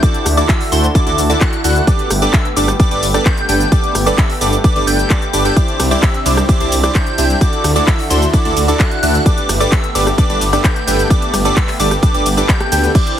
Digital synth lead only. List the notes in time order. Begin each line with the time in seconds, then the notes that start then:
0.03 D6
0.37 D6
0.49 E6
0.72 C6
0.95 D6
1.07 D6
1.30 D6
1.41 F#6
1.64 F#6
1.87 D6
2.22 D6
2.33 E6
2.57 D6
2.80 D6
2.91 D6
3.14 D6
3.26 G6
3.49 G6
3.72 D6
4.06 D6
4.18 E6
4.41 D6
4.64 D6
4.76 D6
4.87 G6
5.10 D6
5.33 D6
5.45 G6
5.57 D6
5.91 D6
6.03 E6
6.26 D6
6.49 D6
6.60 D6
6.83 D6
6.95 G6
7.18 G6
7.41 D6
7.76 D6
7.87 E6
8.10 C6
8.34 D6
8.45 D6
8.68 D6
8.80 F#6
9.03 F#6
9.26 D6
9.60 D6
9.72 E6
9.95 D6
10.18 D6
10.30 D6
10.53 D6
10.64 G6
10.87 G6
11.10 D6
11.45 D6
11.80 D6
12.03 D6
12.14 D6
12.37 D6
12.49 G6
12.72 G6
12.95 D6